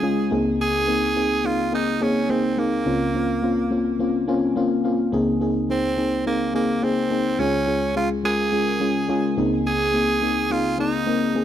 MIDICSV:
0, 0, Header, 1, 3, 480
1, 0, Start_track
1, 0, Tempo, 566038
1, 508, Time_signature, 4, 2, 24, 8
1, 9705, End_track
2, 0, Start_track
2, 0, Title_t, "Tenor saxophone"
2, 0, Program_c, 0, 66
2, 0, Note_on_c, 0, 68, 114
2, 273, Note_off_c, 0, 68, 0
2, 522, Note_on_c, 0, 68, 117
2, 1240, Note_on_c, 0, 65, 101
2, 1252, Note_off_c, 0, 68, 0
2, 1474, Note_off_c, 0, 65, 0
2, 1480, Note_on_c, 0, 63, 104
2, 1718, Note_on_c, 0, 61, 95
2, 1731, Note_off_c, 0, 63, 0
2, 1956, Note_on_c, 0, 60, 96
2, 1968, Note_off_c, 0, 61, 0
2, 2195, Note_on_c, 0, 58, 86
2, 2208, Note_off_c, 0, 60, 0
2, 3152, Note_off_c, 0, 58, 0
2, 4842, Note_on_c, 0, 60, 89
2, 5282, Note_off_c, 0, 60, 0
2, 5319, Note_on_c, 0, 58, 87
2, 5537, Note_off_c, 0, 58, 0
2, 5559, Note_on_c, 0, 58, 86
2, 5797, Note_on_c, 0, 60, 96
2, 5810, Note_off_c, 0, 58, 0
2, 6274, Note_on_c, 0, 61, 101
2, 6287, Note_off_c, 0, 60, 0
2, 6751, Note_off_c, 0, 61, 0
2, 6756, Note_on_c, 0, 65, 101
2, 6862, Note_off_c, 0, 65, 0
2, 6995, Note_on_c, 0, 68, 114
2, 7918, Note_off_c, 0, 68, 0
2, 8199, Note_on_c, 0, 68, 122
2, 8921, Note_on_c, 0, 65, 99
2, 8934, Note_off_c, 0, 68, 0
2, 9154, Note_off_c, 0, 65, 0
2, 9159, Note_on_c, 0, 63, 95
2, 9705, Note_off_c, 0, 63, 0
2, 9705, End_track
3, 0, Start_track
3, 0, Title_t, "FM electric piano"
3, 0, Program_c, 1, 5
3, 0, Control_c, 1, 64, 127
3, 0, Note_on_c, 1, 37, 62
3, 0, Note_on_c, 1, 49, 61
3, 0, Note_on_c, 1, 56, 96
3, 0, Note_on_c, 1, 61, 83
3, 0, Note_on_c, 1, 65, 84
3, 0, Note_on_c, 1, 68, 100
3, 22, Note_off_c, 1, 56, 0
3, 22, Note_on_c, 1, 56, 106
3, 24, Note_off_c, 1, 61, 0
3, 24, Note_on_c, 1, 61, 99
3, 28, Note_off_c, 1, 65, 0
3, 28, Note_on_c, 1, 65, 98
3, 32, Note_off_c, 1, 68, 0
3, 32, Note_on_c, 1, 68, 124
3, 218, Note_off_c, 1, 56, 0
3, 219, Note_off_c, 1, 61, 0
3, 221, Note_off_c, 1, 65, 0
3, 223, Note_off_c, 1, 68, 0
3, 234, Note_off_c, 1, 37, 0
3, 234, Note_off_c, 1, 49, 0
3, 261, Note_on_c, 1, 58, 99
3, 265, Note_on_c, 1, 60, 91
3, 266, Note_on_c, 1, 37, 82
3, 267, Note_on_c, 1, 49, 81
3, 268, Note_on_c, 1, 63, 92
3, 271, Note_on_c, 1, 68, 108
3, 281, Control_c, 1, 64, 0
3, 452, Control_c, 1, 64, 127
3, 651, Note_off_c, 1, 58, 0
3, 652, Note_off_c, 1, 60, 0
3, 654, Note_off_c, 1, 63, 0
3, 656, Note_off_c, 1, 68, 0
3, 742, Note_on_c, 1, 58, 80
3, 745, Note_on_c, 1, 60, 70
3, 749, Note_on_c, 1, 63, 69
3, 752, Note_on_c, 1, 68, 85
3, 938, Note_off_c, 1, 58, 0
3, 940, Note_off_c, 1, 60, 0
3, 942, Note_off_c, 1, 63, 0
3, 943, Note_off_c, 1, 68, 0
3, 982, Note_on_c, 1, 58, 77
3, 986, Note_on_c, 1, 60, 70
3, 989, Note_on_c, 1, 63, 68
3, 993, Note_on_c, 1, 68, 83
3, 1178, Note_off_c, 1, 58, 0
3, 1180, Note_off_c, 1, 60, 0
3, 1182, Note_off_c, 1, 63, 0
3, 1183, Note_off_c, 1, 68, 0
3, 1221, Note_on_c, 1, 58, 69
3, 1225, Note_on_c, 1, 60, 64
3, 1228, Note_on_c, 1, 63, 65
3, 1231, Note_on_c, 1, 68, 80
3, 1418, Note_off_c, 1, 58, 0
3, 1419, Note_off_c, 1, 60, 0
3, 1421, Note_off_c, 1, 63, 0
3, 1423, Note_off_c, 1, 68, 0
3, 1461, Note_on_c, 1, 58, 76
3, 1464, Note_on_c, 1, 60, 72
3, 1467, Note_on_c, 1, 63, 72
3, 1471, Note_on_c, 1, 68, 88
3, 1657, Note_off_c, 1, 58, 0
3, 1659, Note_off_c, 1, 60, 0
3, 1661, Note_off_c, 1, 63, 0
3, 1662, Note_off_c, 1, 68, 0
3, 1701, Note_on_c, 1, 58, 94
3, 1705, Note_on_c, 1, 60, 83
3, 1708, Note_on_c, 1, 63, 87
3, 1711, Note_on_c, 1, 68, 109
3, 1898, Note_off_c, 1, 58, 0
3, 1899, Note_off_c, 1, 60, 0
3, 1901, Note_off_c, 1, 63, 0
3, 1902, Note_off_c, 1, 68, 0
3, 1942, Note_on_c, 1, 58, 91
3, 1946, Note_on_c, 1, 60, 84
3, 1949, Note_on_c, 1, 63, 85
3, 1953, Note_on_c, 1, 68, 102
3, 2138, Note_off_c, 1, 58, 0
3, 2140, Note_off_c, 1, 60, 0
3, 2141, Note_off_c, 1, 63, 0
3, 2143, Note_off_c, 1, 68, 0
3, 2153, Note_off_c, 1, 37, 0
3, 2154, Note_off_c, 1, 49, 0
3, 2182, Note_on_c, 1, 58, 79
3, 2186, Note_on_c, 1, 60, 72
3, 2189, Note_on_c, 1, 63, 74
3, 2193, Note_on_c, 1, 68, 92
3, 2378, Note_off_c, 1, 58, 0
3, 2380, Note_off_c, 1, 60, 0
3, 2382, Note_off_c, 1, 63, 0
3, 2383, Note_off_c, 1, 68, 0
3, 2422, Note_on_c, 1, 58, 92
3, 2427, Note_on_c, 1, 37, 62
3, 2427, Note_on_c, 1, 49, 60
3, 2427, Note_on_c, 1, 60, 82
3, 2429, Note_on_c, 1, 61, 80
3, 2433, Note_on_c, 1, 65, 99
3, 2438, Control_c, 1, 64, 0
3, 2586, Control_c, 1, 64, 127
3, 2618, Note_off_c, 1, 58, 0
3, 2620, Note_off_c, 1, 60, 0
3, 2622, Note_off_c, 1, 61, 0
3, 2623, Note_off_c, 1, 65, 0
3, 2663, Note_on_c, 1, 58, 76
3, 2667, Note_on_c, 1, 60, 73
3, 2670, Note_on_c, 1, 61, 69
3, 2673, Note_on_c, 1, 65, 82
3, 2859, Note_off_c, 1, 58, 0
3, 2860, Note_off_c, 1, 60, 0
3, 2862, Note_off_c, 1, 61, 0
3, 2864, Note_off_c, 1, 65, 0
3, 2903, Note_on_c, 1, 58, 87
3, 2907, Note_on_c, 1, 60, 75
3, 2911, Note_on_c, 1, 61, 77
3, 2913, Note_on_c, 1, 65, 96
3, 3099, Note_off_c, 1, 58, 0
3, 3101, Note_off_c, 1, 60, 0
3, 3102, Note_off_c, 1, 61, 0
3, 3104, Note_off_c, 1, 65, 0
3, 3144, Note_on_c, 1, 58, 83
3, 3147, Note_on_c, 1, 60, 75
3, 3150, Note_on_c, 1, 61, 75
3, 3154, Note_on_c, 1, 65, 94
3, 3339, Note_off_c, 1, 58, 0
3, 3341, Note_off_c, 1, 60, 0
3, 3342, Note_off_c, 1, 61, 0
3, 3344, Note_off_c, 1, 65, 0
3, 3385, Note_on_c, 1, 58, 89
3, 3388, Note_on_c, 1, 60, 86
3, 3391, Note_on_c, 1, 61, 84
3, 3395, Note_on_c, 1, 65, 97
3, 3579, Note_off_c, 1, 58, 0
3, 3581, Note_off_c, 1, 60, 0
3, 3583, Note_off_c, 1, 61, 0
3, 3585, Note_off_c, 1, 65, 0
3, 3625, Note_on_c, 1, 58, 108
3, 3629, Note_on_c, 1, 60, 98
3, 3630, Note_on_c, 1, 80, 69
3, 3632, Note_on_c, 1, 61, 106
3, 3635, Note_on_c, 1, 65, 122
3, 3820, Note_off_c, 1, 58, 0
3, 3822, Note_off_c, 1, 60, 0
3, 3823, Note_off_c, 1, 61, 0
3, 3825, Note_off_c, 1, 65, 0
3, 3852, Note_off_c, 1, 80, 0
3, 3866, Note_on_c, 1, 58, 106
3, 3869, Note_on_c, 1, 60, 98
3, 3872, Note_on_c, 1, 77, 69
3, 3873, Note_on_c, 1, 61, 98
3, 3877, Note_on_c, 1, 65, 120
3, 4060, Note_off_c, 1, 58, 0
3, 4062, Note_off_c, 1, 60, 0
3, 4064, Note_off_c, 1, 61, 0
3, 4065, Note_off_c, 1, 65, 0
3, 4093, Note_off_c, 1, 77, 0
3, 4105, Note_on_c, 1, 58, 93
3, 4108, Note_on_c, 1, 60, 87
3, 4110, Note_on_c, 1, 77, 73
3, 4112, Note_on_c, 1, 61, 85
3, 4116, Note_on_c, 1, 65, 101
3, 4300, Note_off_c, 1, 58, 0
3, 4301, Note_off_c, 1, 60, 0
3, 4303, Note_off_c, 1, 61, 0
3, 4305, Note_off_c, 1, 65, 0
3, 4314, Note_off_c, 1, 37, 0
3, 4314, Note_off_c, 1, 49, 0
3, 4332, Note_off_c, 1, 77, 0
3, 4344, Note_on_c, 1, 58, 109
3, 4349, Note_on_c, 1, 60, 99
3, 4350, Note_on_c, 1, 37, 71
3, 4350, Note_on_c, 1, 49, 73
3, 4351, Note_on_c, 1, 63, 95
3, 4355, Note_on_c, 1, 68, 113
3, 4357, Control_c, 1, 64, 0
3, 4525, Control_c, 1, 64, 127
3, 4539, Note_off_c, 1, 58, 0
3, 4541, Note_off_c, 1, 60, 0
3, 4543, Note_off_c, 1, 63, 0
3, 4544, Note_off_c, 1, 68, 0
3, 4583, Note_on_c, 1, 58, 89
3, 4588, Note_on_c, 1, 60, 83
3, 4591, Note_on_c, 1, 63, 81
3, 4594, Note_on_c, 1, 68, 99
3, 4779, Note_off_c, 1, 58, 0
3, 4781, Note_off_c, 1, 60, 0
3, 4782, Note_off_c, 1, 63, 0
3, 4784, Note_off_c, 1, 68, 0
3, 4825, Note_on_c, 1, 58, 72
3, 4828, Note_on_c, 1, 60, 64
3, 4831, Note_on_c, 1, 63, 69
3, 4835, Note_on_c, 1, 68, 82
3, 5019, Note_off_c, 1, 58, 0
3, 5021, Note_off_c, 1, 60, 0
3, 5022, Note_off_c, 1, 63, 0
3, 5024, Note_off_c, 1, 68, 0
3, 5064, Note_on_c, 1, 58, 72
3, 5067, Note_on_c, 1, 60, 65
3, 5071, Note_on_c, 1, 63, 64
3, 5075, Note_on_c, 1, 68, 75
3, 5259, Note_off_c, 1, 58, 0
3, 5261, Note_off_c, 1, 60, 0
3, 5263, Note_off_c, 1, 63, 0
3, 5264, Note_off_c, 1, 68, 0
3, 5303, Note_on_c, 1, 58, 76
3, 5306, Note_on_c, 1, 60, 69
3, 5310, Note_on_c, 1, 63, 70
3, 5314, Note_on_c, 1, 68, 84
3, 5499, Note_off_c, 1, 58, 0
3, 5500, Note_off_c, 1, 60, 0
3, 5502, Note_off_c, 1, 63, 0
3, 5504, Note_off_c, 1, 68, 0
3, 5543, Note_on_c, 1, 58, 90
3, 5545, Note_on_c, 1, 60, 80
3, 5549, Note_on_c, 1, 63, 83
3, 5552, Note_on_c, 1, 68, 102
3, 5738, Note_off_c, 1, 58, 0
3, 5740, Note_off_c, 1, 60, 0
3, 5741, Note_off_c, 1, 63, 0
3, 5743, Note_off_c, 1, 68, 0
3, 5782, Note_on_c, 1, 58, 88
3, 5786, Note_on_c, 1, 60, 87
3, 5789, Note_on_c, 1, 63, 84
3, 5793, Note_on_c, 1, 68, 102
3, 5978, Note_off_c, 1, 58, 0
3, 5980, Note_off_c, 1, 60, 0
3, 5982, Note_off_c, 1, 63, 0
3, 5983, Note_off_c, 1, 68, 0
3, 6023, Note_on_c, 1, 58, 79
3, 6027, Note_on_c, 1, 60, 68
3, 6030, Note_on_c, 1, 63, 73
3, 6033, Note_on_c, 1, 68, 89
3, 6219, Note_off_c, 1, 58, 0
3, 6221, Note_off_c, 1, 60, 0
3, 6222, Note_off_c, 1, 63, 0
3, 6224, Note_off_c, 1, 68, 0
3, 6235, Note_off_c, 1, 37, 0
3, 6235, Note_off_c, 1, 49, 0
3, 6263, Note_on_c, 1, 56, 92
3, 6267, Note_on_c, 1, 49, 61
3, 6267, Note_on_c, 1, 61, 86
3, 6269, Note_on_c, 1, 37, 61
3, 6270, Note_on_c, 1, 65, 85
3, 6273, Note_on_c, 1, 68, 105
3, 6278, Control_c, 1, 64, 0
3, 6412, Control_c, 1, 64, 127
3, 6458, Note_off_c, 1, 56, 0
3, 6460, Note_off_c, 1, 61, 0
3, 6462, Note_off_c, 1, 65, 0
3, 6464, Note_off_c, 1, 68, 0
3, 6504, Note_on_c, 1, 56, 76
3, 6508, Note_on_c, 1, 61, 71
3, 6511, Note_on_c, 1, 65, 69
3, 6515, Note_on_c, 1, 68, 83
3, 6699, Note_off_c, 1, 56, 0
3, 6701, Note_off_c, 1, 61, 0
3, 6703, Note_off_c, 1, 65, 0
3, 6705, Note_off_c, 1, 68, 0
3, 6744, Note_on_c, 1, 56, 77
3, 6747, Note_on_c, 1, 61, 69
3, 6750, Note_on_c, 1, 65, 67
3, 6754, Note_on_c, 1, 68, 80
3, 6939, Note_off_c, 1, 56, 0
3, 6940, Note_off_c, 1, 61, 0
3, 6942, Note_off_c, 1, 65, 0
3, 6944, Note_off_c, 1, 68, 0
3, 6983, Note_on_c, 1, 56, 72
3, 6987, Note_on_c, 1, 61, 66
3, 6991, Note_on_c, 1, 65, 68
3, 6993, Note_on_c, 1, 70, 77
3, 7179, Note_off_c, 1, 56, 0
3, 7181, Note_off_c, 1, 61, 0
3, 7182, Note_off_c, 1, 65, 0
3, 7184, Note_off_c, 1, 70, 0
3, 7225, Note_on_c, 1, 56, 79
3, 7229, Note_on_c, 1, 61, 73
3, 7232, Note_on_c, 1, 65, 72
3, 7235, Note_on_c, 1, 68, 87
3, 7419, Note_off_c, 1, 56, 0
3, 7421, Note_off_c, 1, 61, 0
3, 7423, Note_off_c, 1, 65, 0
3, 7425, Note_off_c, 1, 68, 0
3, 7465, Note_on_c, 1, 56, 92
3, 7469, Note_on_c, 1, 61, 91
3, 7472, Note_on_c, 1, 65, 86
3, 7475, Note_on_c, 1, 68, 104
3, 7660, Note_off_c, 1, 56, 0
3, 7661, Note_off_c, 1, 61, 0
3, 7663, Note_off_c, 1, 65, 0
3, 7665, Note_off_c, 1, 68, 0
3, 7705, Note_on_c, 1, 56, 110
3, 7708, Note_on_c, 1, 61, 97
3, 7712, Note_on_c, 1, 65, 100
3, 7715, Note_on_c, 1, 68, 127
3, 7899, Note_off_c, 1, 56, 0
3, 7901, Note_off_c, 1, 61, 0
3, 7903, Note_off_c, 1, 65, 0
3, 7905, Note_off_c, 1, 68, 0
3, 7914, Note_off_c, 1, 37, 0
3, 7914, Note_off_c, 1, 49, 0
3, 7945, Note_on_c, 1, 58, 99
3, 7947, Note_on_c, 1, 60, 96
3, 7949, Note_on_c, 1, 37, 79
3, 7950, Note_on_c, 1, 49, 85
3, 7951, Note_on_c, 1, 63, 95
3, 7954, Note_on_c, 1, 68, 112
3, 7957, Control_c, 1, 64, 0
3, 8106, Control_c, 1, 64, 127
3, 8332, Note_off_c, 1, 58, 0
3, 8334, Note_off_c, 1, 60, 0
3, 8336, Note_off_c, 1, 63, 0
3, 8337, Note_off_c, 1, 68, 0
3, 8426, Note_on_c, 1, 58, 78
3, 8430, Note_on_c, 1, 60, 67
3, 8433, Note_on_c, 1, 63, 72
3, 8436, Note_on_c, 1, 68, 85
3, 8620, Note_off_c, 1, 58, 0
3, 8622, Note_off_c, 1, 60, 0
3, 8623, Note_off_c, 1, 63, 0
3, 8625, Note_off_c, 1, 68, 0
3, 8665, Note_on_c, 1, 58, 73
3, 8669, Note_on_c, 1, 60, 68
3, 8672, Note_on_c, 1, 63, 70
3, 8676, Note_on_c, 1, 68, 85
3, 8860, Note_off_c, 1, 58, 0
3, 8861, Note_off_c, 1, 60, 0
3, 8863, Note_off_c, 1, 63, 0
3, 8865, Note_off_c, 1, 68, 0
3, 8903, Note_on_c, 1, 58, 70
3, 8906, Note_on_c, 1, 60, 67
3, 8909, Note_on_c, 1, 63, 66
3, 8913, Note_on_c, 1, 68, 82
3, 9098, Note_off_c, 1, 58, 0
3, 9100, Note_off_c, 1, 60, 0
3, 9102, Note_off_c, 1, 63, 0
3, 9104, Note_off_c, 1, 68, 0
3, 9143, Note_on_c, 1, 58, 75
3, 9147, Note_on_c, 1, 60, 70
3, 9150, Note_on_c, 1, 63, 74
3, 9154, Note_on_c, 1, 68, 88
3, 9339, Note_off_c, 1, 58, 0
3, 9340, Note_off_c, 1, 60, 0
3, 9342, Note_off_c, 1, 63, 0
3, 9344, Note_off_c, 1, 68, 0
3, 9384, Note_on_c, 1, 58, 97
3, 9386, Note_on_c, 1, 60, 92
3, 9390, Note_on_c, 1, 63, 86
3, 9394, Note_on_c, 1, 70, 100
3, 9579, Note_off_c, 1, 58, 0
3, 9580, Note_off_c, 1, 60, 0
3, 9582, Note_off_c, 1, 63, 0
3, 9584, Note_off_c, 1, 70, 0
3, 9625, Note_on_c, 1, 58, 93
3, 9628, Note_on_c, 1, 60, 85
3, 9632, Note_on_c, 1, 63, 91
3, 9635, Note_on_c, 1, 68, 104
3, 9705, Note_off_c, 1, 37, 0
3, 9705, Note_off_c, 1, 49, 0
3, 9705, Note_off_c, 1, 58, 0
3, 9705, Note_off_c, 1, 60, 0
3, 9705, Note_off_c, 1, 63, 0
3, 9705, Note_off_c, 1, 68, 0
3, 9705, End_track
0, 0, End_of_file